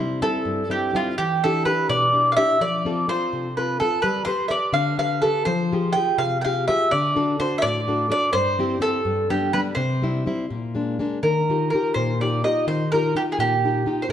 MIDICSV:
0, 0, Header, 1, 3, 480
1, 0, Start_track
1, 0, Key_signature, 0, "major"
1, 0, Tempo, 478088
1, 1201, Time_signature, 6, 3, 24, 8
1, 14179, End_track
2, 0, Start_track
2, 0, Title_t, "Mandolin"
2, 0, Program_c, 0, 25
2, 0, Note_on_c, 0, 72, 65
2, 200, Note_off_c, 0, 72, 0
2, 223, Note_on_c, 0, 69, 73
2, 691, Note_off_c, 0, 69, 0
2, 714, Note_on_c, 0, 67, 63
2, 941, Note_off_c, 0, 67, 0
2, 962, Note_on_c, 0, 65, 74
2, 1180, Note_off_c, 0, 65, 0
2, 1184, Note_on_c, 0, 67, 86
2, 1427, Note_off_c, 0, 67, 0
2, 1442, Note_on_c, 0, 69, 86
2, 1655, Note_off_c, 0, 69, 0
2, 1659, Note_on_c, 0, 71, 77
2, 1898, Note_off_c, 0, 71, 0
2, 1902, Note_on_c, 0, 74, 86
2, 2305, Note_off_c, 0, 74, 0
2, 2329, Note_on_c, 0, 77, 64
2, 2372, Note_off_c, 0, 77, 0
2, 2376, Note_on_c, 0, 76, 96
2, 2601, Note_off_c, 0, 76, 0
2, 2624, Note_on_c, 0, 74, 89
2, 3099, Note_off_c, 0, 74, 0
2, 3103, Note_on_c, 0, 72, 89
2, 3555, Note_off_c, 0, 72, 0
2, 3584, Note_on_c, 0, 71, 62
2, 3803, Note_off_c, 0, 71, 0
2, 3813, Note_on_c, 0, 69, 79
2, 4032, Note_off_c, 0, 69, 0
2, 4036, Note_on_c, 0, 71, 85
2, 4261, Note_off_c, 0, 71, 0
2, 4265, Note_on_c, 0, 72, 91
2, 4468, Note_off_c, 0, 72, 0
2, 4501, Note_on_c, 0, 76, 63
2, 4526, Note_on_c, 0, 74, 78
2, 4551, Note_off_c, 0, 76, 0
2, 4752, Note_off_c, 0, 74, 0
2, 4755, Note_on_c, 0, 77, 92
2, 4998, Note_off_c, 0, 77, 0
2, 5010, Note_on_c, 0, 77, 80
2, 5237, Note_on_c, 0, 69, 74
2, 5239, Note_off_c, 0, 77, 0
2, 5470, Note_off_c, 0, 69, 0
2, 5475, Note_on_c, 0, 72, 88
2, 5949, Note_on_c, 0, 79, 83
2, 5997, Note_off_c, 0, 72, 0
2, 6205, Note_off_c, 0, 79, 0
2, 6209, Note_on_c, 0, 77, 91
2, 6399, Note_off_c, 0, 77, 0
2, 6439, Note_on_c, 0, 79, 61
2, 6467, Note_off_c, 0, 79, 0
2, 6471, Note_on_c, 0, 77, 77
2, 6697, Note_off_c, 0, 77, 0
2, 6703, Note_on_c, 0, 76, 91
2, 6929, Note_off_c, 0, 76, 0
2, 6940, Note_on_c, 0, 74, 93
2, 7398, Note_off_c, 0, 74, 0
2, 7426, Note_on_c, 0, 72, 82
2, 7587, Note_off_c, 0, 72, 0
2, 7612, Note_on_c, 0, 76, 72
2, 7651, Note_on_c, 0, 74, 103
2, 7676, Note_off_c, 0, 76, 0
2, 8112, Note_off_c, 0, 74, 0
2, 8148, Note_on_c, 0, 74, 94
2, 8357, Note_off_c, 0, 74, 0
2, 8361, Note_on_c, 0, 72, 98
2, 8819, Note_off_c, 0, 72, 0
2, 8854, Note_on_c, 0, 69, 88
2, 9335, Note_off_c, 0, 69, 0
2, 9340, Note_on_c, 0, 67, 70
2, 9558, Note_off_c, 0, 67, 0
2, 9571, Note_on_c, 0, 71, 94
2, 9635, Note_off_c, 0, 71, 0
2, 9787, Note_on_c, 0, 72, 76
2, 10974, Note_off_c, 0, 72, 0
2, 11274, Note_on_c, 0, 70, 64
2, 11737, Note_off_c, 0, 70, 0
2, 11749, Note_on_c, 0, 70, 55
2, 11973, Note_off_c, 0, 70, 0
2, 11991, Note_on_c, 0, 72, 81
2, 12256, Note_off_c, 0, 72, 0
2, 12260, Note_on_c, 0, 74, 59
2, 12473, Note_off_c, 0, 74, 0
2, 12492, Note_on_c, 0, 75, 76
2, 12706, Note_off_c, 0, 75, 0
2, 12729, Note_on_c, 0, 72, 74
2, 12960, Note_off_c, 0, 72, 0
2, 12970, Note_on_c, 0, 70, 80
2, 13187, Note_off_c, 0, 70, 0
2, 13218, Note_on_c, 0, 67, 71
2, 13268, Note_off_c, 0, 67, 0
2, 13375, Note_on_c, 0, 68, 53
2, 13438, Note_off_c, 0, 68, 0
2, 13453, Note_on_c, 0, 67, 74
2, 13947, Note_off_c, 0, 67, 0
2, 14079, Note_on_c, 0, 72, 60
2, 14146, Note_off_c, 0, 72, 0
2, 14179, End_track
3, 0, Start_track
3, 0, Title_t, "Nylon-string guitar"
3, 0, Program_c, 1, 24
3, 0, Note_on_c, 1, 48, 61
3, 0, Note_on_c, 1, 55, 49
3, 0, Note_on_c, 1, 60, 40
3, 0, Note_on_c, 1, 64, 55
3, 206, Note_off_c, 1, 55, 0
3, 208, Note_off_c, 1, 60, 0
3, 211, Note_off_c, 1, 48, 0
3, 217, Note_on_c, 1, 55, 37
3, 218, Note_off_c, 1, 64, 0
3, 221, Note_on_c, 1, 60, 39
3, 231, Note_on_c, 1, 64, 52
3, 454, Note_on_c, 1, 43, 64
3, 623, Note_off_c, 1, 55, 0
3, 624, Note_off_c, 1, 60, 0
3, 630, Note_off_c, 1, 64, 0
3, 693, Note_on_c, 1, 55, 39
3, 697, Note_on_c, 1, 60, 38
3, 703, Note_on_c, 1, 64, 43
3, 925, Note_off_c, 1, 55, 0
3, 937, Note_off_c, 1, 60, 0
3, 937, Note_on_c, 1, 55, 41
3, 938, Note_off_c, 1, 64, 0
3, 943, Note_off_c, 1, 43, 0
3, 947, Note_on_c, 1, 60, 47
3, 953, Note_on_c, 1, 64, 46
3, 1136, Note_off_c, 1, 55, 0
3, 1143, Note_off_c, 1, 60, 0
3, 1144, Note_off_c, 1, 64, 0
3, 1190, Note_on_c, 1, 52, 67
3, 1449, Note_on_c, 1, 62, 53
3, 1457, Note_on_c, 1, 64, 45
3, 1463, Note_on_c, 1, 67, 54
3, 1655, Note_off_c, 1, 67, 0
3, 1657, Note_off_c, 1, 62, 0
3, 1657, Note_off_c, 1, 64, 0
3, 1666, Note_off_c, 1, 52, 0
3, 1666, Note_on_c, 1, 62, 49
3, 1669, Note_on_c, 1, 67, 51
3, 1674, Note_on_c, 1, 64, 38
3, 1901, Note_on_c, 1, 47, 72
3, 2062, Note_off_c, 1, 67, 0
3, 2063, Note_off_c, 1, 62, 0
3, 2063, Note_off_c, 1, 64, 0
3, 2143, Note_on_c, 1, 64, 39
3, 2146, Note_on_c, 1, 62, 37
3, 2154, Note_on_c, 1, 67, 40
3, 2368, Note_off_c, 1, 62, 0
3, 2373, Note_off_c, 1, 67, 0
3, 2376, Note_off_c, 1, 64, 0
3, 2378, Note_off_c, 1, 47, 0
3, 2380, Note_on_c, 1, 62, 53
3, 2384, Note_on_c, 1, 67, 56
3, 2389, Note_on_c, 1, 64, 41
3, 2572, Note_off_c, 1, 62, 0
3, 2575, Note_off_c, 1, 67, 0
3, 2577, Note_off_c, 1, 64, 0
3, 2619, Note_on_c, 1, 53, 59
3, 2864, Note_on_c, 1, 60, 53
3, 2872, Note_on_c, 1, 65, 51
3, 2876, Note_on_c, 1, 69, 55
3, 3085, Note_off_c, 1, 65, 0
3, 3089, Note_off_c, 1, 60, 0
3, 3090, Note_off_c, 1, 53, 0
3, 3094, Note_off_c, 1, 69, 0
3, 3097, Note_on_c, 1, 65, 45
3, 3101, Note_on_c, 1, 60, 49
3, 3106, Note_on_c, 1, 69, 51
3, 3342, Note_on_c, 1, 48, 65
3, 3488, Note_off_c, 1, 65, 0
3, 3491, Note_off_c, 1, 60, 0
3, 3494, Note_off_c, 1, 69, 0
3, 3588, Note_on_c, 1, 60, 36
3, 3592, Note_on_c, 1, 65, 31
3, 3596, Note_on_c, 1, 69, 45
3, 3810, Note_off_c, 1, 48, 0
3, 3812, Note_off_c, 1, 60, 0
3, 3815, Note_off_c, 1, 69, 0
3, 3819, Note_off_c, 1, 65, 0
3, 3823, Note_on_c, 1, 60, 40
3, 3830, Note_on_c, 1, 69, 49
3, 3831, Note_on_c, 1, 65, 37
3, 4010, Note_off_c, 1, 60, 0
3, 4012, Note_off_c, 1, 69, 0
3, 4014, Note_off_c, 1, 65, 0
3, 4053, Note_on_c, 1, 55, 61
3, 4273, Note_off_c, 1, 55, 0
3, 4277, Note_on_c, 1, 67, 46
3, 4284, Note_on_c, 1, 69, 43
3, 4289, Note_on_c, 1, 71, 62
3, 4506, Note_off_c, 1, 67, 0
3, 4509, Note_off_c, 1, 69, 0
3, 4511, Note_off_c, 1, 71, 0
3, 4517, Note_on_c, 1, 67, 45
3, 4523, Note_on_c, 1, 71, 49
3, 4524, Note_on_c, 1, 69, 37
3, 4746, Note_on_c, 1, 50, 66
3, 4920, Note_off_c, 1, 67, 0
3, 4922, Note_off_c, 1, 69, 0
3, 4923, Note_off_c, 1, 71, 0
3, 5006, Note_on_c, 1, 67, 33
3, 5006, Note_on_c, 1, 71, 44
3, 5012, Note_on_c, 1, 69, 33
3, 5235, Note_off_c, 1, 67, 0
3, 5237, Note_off_c, 1, 50, 0
3, 5244, Note_off_c, 1, 69, 0
3, 5247, Note_on_c, 1, 67, 50
3, 5248, Note_off_c, 1, 71, 0
3, 5255, Note_on_c, 1, 69, 40
3, 5262, Note_on_c, 1, 71, 47
3, 5444, Note_off_c, 1, 67, 0
3, 5449, Note_off_c, 1, 69, 0
3, 5452, Note_off_c, 1, 71, 0
3, 5486, Note_on_c, 1, 53, 67
3, 5746, Note_on_c, 1, 65, 56
3, 5754, Note_on_c, 1, 68, 57
3, 5755, Note_on_c, 1, 67, 43
3, 5966, Note_off_c, 1, 65, 0
3, 5967, Note_off_c, 1, 67, 0
3, 5973, Note_off_c, 1, 53, 0
3, 5976, Note_off_c, 1, 68, 0
3, 5976, Note_on_c, 1, 65, 46
3, 5982, Note_on_c, 1, 67, 42
3, 5988, Note_on_c, 1, 68, 56
3, 6205, Note_on_c, 1, 48, 64
3, 6380, Note_off_c, 1, 65, 0
3, 6381, Note_off_c, 1, 67, 0
3, 6386, Note_off_c, 1, 68, 0
3, 6481, Note_on_c, 1, 65, 44
3, 6484, Note_on_c, 1, 67, 40
3, 6488, Note_on_c, 1, 68, 40
3, 6695, Note_off_c, 1, 48, 0
3, 6702, Note_off_c, 1, 65, 0
3, 6704, Note_off_c, 1, 68, 0
3, 6706, Note_off_c, 1, 67, 0
3, 6713, Note_on_c, 1, 65, 48
3, 6718, Note_on_c, 1, 67, 43
3, 6718, Note_on_c, 1, 68, 46
3, 6904, Note_off_c, 1, 65, 0
3, 6905, Note_off_c, 1, 68, 0
3, 6906, Note_off_c, 1, 67, 0
3, 6953, Note_on_c, 1, 50, 66
3, 7187, Note_on_c, 1, 62, 48
3, 7194, Note_on_c, 1, 66, 47
3, 7194, Note_on_c, 1, 69, 61
3, 7407, Note_off_c, 1, 62, 0
3, 7416, Note_off_c, 1, 69, 0
3, 7417, Note_off_c, 1, 66, 0
3, 7419, Note_on_c, 1, 62, 39
3, 7424, Note_off_c, 1, 50, 0
3, 7428, Note_on_c, 1, 66, 37
3, 7431, Note_on_c, 1, 69, 48
3, 7660, Note_on_c, 1, 45, 67
3, 7816, Note_off_c, 1, 62, 0
3, 7822, Note_off_c, 1, 69, 0
3, 7823, Note_off_c, 1, 66, 0
3, 7909, Note_on_c, 1, 66, 37
3, 7916, Note_on_c, 1, 62, 43
3, 7920, Note_on_c, 1, 69, 42
3, 8117, Note_off_c, 1, 62, 0
3, 8122, Note_off_c, 1, 66, 0
3, 8126, Note_off_c, 1, 69, 0
3, 8129, Note_on_c, 1, 62, 52
3, 8134, Note_on_c, 1, 66, 39
3, 8136, Note_off_c, 1, 45, 0
3, 8139, Note_on_c, 1, 69, 51
3, 8324, Note_off_c, 1, 62, 0
3, 8328, Note_off_c, 1, 66, 0
3, 8330, Note_off_c, 1, 69, 0
3, 8368, Note_on_c, 1, 43, 58
3, 8621, Note_on_c, 1, 60, 58
3, 8628, Note_on_c, 1, 64, 54
3, 8633, Note_on_c, 1, 67, 60
3, 8826, Note_off_c, 1, 60, 0
3, 8830, Note_off_c, 1, 64, 0
3, 8837, Note_on_c, 1, 60, 47
3, 8838, Note_off_c, 1, 67, 0
3, 8842, Note_off_c, 1, 43, 0
3, 8845, Note_on_c, 1, 64, 44
3, 8850, Note_on_c, 1, 67, 54
3, 9033, Note_off_c, 1, 60, 0
3, 9035, Note_off_c, 1, 64, 0
3, 9040, Note_off_c, 1, 67, 0
3, 9086, Note_on_c, 1, 43, 65
3, 9338, Note_on_c, 1, 55, 41
3, 9343, Note_on_c, 1, 59, 34
3, 9343, Note_on_c, 1, 62, 48
3, 9558, Note_off_c, 1, 43, 0
3, 9564, Note_off_c, 1, 55, 0
3, 9567, Note_off_c, 1, 59, 0
3, 9569, Note_off_c, 1, 62, 0
3, 9575, Note_on_c, 1, 55, 45
3, 9581, Note_on_c, 1, 59, 46
3, 9581, Note_on_c, 1, 62, 48
3, 9763, Note_off_c, 1, 55, 0
3, 9765, Note_off_c, 1, 59, 0
3, 9766, Note_off_c, 1, 62, 0
3, 9804, Note_on_c, 1, 48, 70
3, 10061, Note_on_c, 1, 55, 58
3, 10072, Note_on_c, 1, 60, 52
3, 10076, Note_on_c, 1, 64, 62
3, 10281, Note_off_c, 1, 48, 0
3, 10292, Note_off_c, 1, 55, 0
3, 10295, Note_off_c, 1, 60, 0
3, 10302, Note_off_c, 1, 64, 0
3, 10302, Note_on_c, 1, 55, 43
3, 10309, Note_on_c, 1, 60, 38
3, 10314, Note_on_c, 1, 64, 57
3, 10489, Note_off_c, 1, 55, 0
3, 10491, Note_off_c, 1, 60, 0
3, 10495, Note_off_c, 1, 64, 0
3, 10547, Note_on_c, 1, 46, 69
3, 10790, Note_on_c, 1, 56, 38
3, 10793, Note_on_c, 1, 58, 33
3, 10801, Note_on_c, 1, 62, 45
3, 11018, Note_off_c, 1, 46, 0
3, 11025, Note_off_c, 1, 56, 0
3, 11033, Note_off_c, 1, 58, 0
3, 11035, Note_off_c, 1, 62, 0
3, 11037, Note_on_c, 1, 56, 44
3, 11044, Note_on_c, 1, 58, 44
3, 11049, Note_on_c, 1, 62, 46
3, 11223, Note_off_c, 1, 56, 0
3, 11228, Note_off_c, 1, 58, 0
3, 11229, Note_off_c, 1, 62, 0
3, 11276, Note_on_c, 1, 51, 51
3, 11542, Note_on_c, 1, 65, 41
3, 11543, Note_on_c, 1, 63, 48
3, 11549, Note_on_c, 1, 67, 54
3, 11751, Note_off_c, 1, 51, 0
3, 11769, Note_off_c, 1, 63, 0
3, 11776, Note_off_c, 1, 65, 0
3, 11782, Note_on_c, 1, 63, 37
3, 11783, Note_off_c, 1, 67, 0
3, 11788, Note_on_c, 1, 65, 38
3, 11795, Note_on_c, 1, 67, 46
3, 12005, Note_on_c, 1, 46, 64
3, 12166, Note_off_c, 1, 63, 0
3, 12169, Note_off_c, 1, 65, 0
3, 12174, Note_off_c, 1, 67, 0
3, 12252, Note_on_c, 1, 63, 35
3, 12261, Note_on_c, 1, 65, 36
3, 12270, Note_on_c, 1, 67, 37
3, 12475, Note_off_c, 1, 46, 0
3, 12478, Note_off_c, 1, 63, 0
3, 12480, Note_off_c, 1, 65, 0
3, 12487, Note_off_c, 1, 67, 0
3, 12490, Note_on_c, 1, 63, 37
3, 12493, Note_on_c, 1, 65, 41
3, 12499, Note_on_c, 1, 67, 52
3, 12723, Note_on_c, 1, 51, 51
3, 12877, Note_off_c, 1, 63, 0
3, 12879, Note_off_c, 1, 65, 0
3, 12883, Note_off_c, 1, 67, 0
3, 12980, Note_on_c, 1, 63, 49
3, 12988, Note_on_c, 1, 65, 43
3, 12998, Note_on_c, 1, 67, 46
3, 13192, Note_off_c, 1, 51, 0
3, 13196, Note_off_c, 1, 65, 0
3, 13198, Note_off_c, 1, 63, 0
3, 13204, Note_off_c, 1, 67, 0
3, 13209, Note_on_c, 1, 63, 43
3, 13209, Note_on_c, 1, 65, 37
3, 13216, Note_on_c, 1, 67, 52
3, 13439, Note_on_c, 1, 46, 64
3, 13593, Note_off_c, 1, 65, 0
3, 13594, Note_off_c, 1, 63, 0
3, 13598, Note_off_c, 1, 67, 0
3, 13702, Note_on_c, 1, 65, 33
3, 13705, Note_on_c, 1, 63, 44
3, 13712, Note_on_c, 1, 67, 44
3, 13905, Note_off_c, 1, 46, 0
3, 13905, Note_off_c, 1, 63, 0
3, 13912, Note_off_c, 1, 65, 0
3, 13917, Note_on_c, 1, 63, 46
3, 13919, Note_off_c, 1, 67, 0
3, 13924, Note_on_c, 1, 65, 38
3, 13931, Note_on_c, 1, 67, 56
3, 14101, Note_off_c, 1, 63, 0
3, 14105, Note_off_c, 1, 65, 0
3, 14110, Note_off_c, 1, 67, 0
3, 14146, Note_on_c, 1, 46, 63
3, 14179, Note_off_c, 1, 46, 0
3, 14179, End_track
0, 0, End_of_file